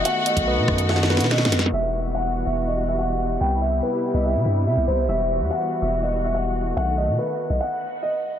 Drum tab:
HH |x-----x--x-----------x-----------x--------x-----|------------------------------------------------|------------------------------------------------|------------------------------------------------|
SD |------------------r-----o-o-o-o-o-o-o-o-o-o-o-o-|------------------------------------------------|------------------------------------------------|------------------------------------------------|
BD |---------o--------o-----------------------------|------------------------------------------------|------------------------------------------------|------------------------------------------------|

HH |------------------------------------------------|
SD |------------------------------------------------|
BD |------------------------------------------------|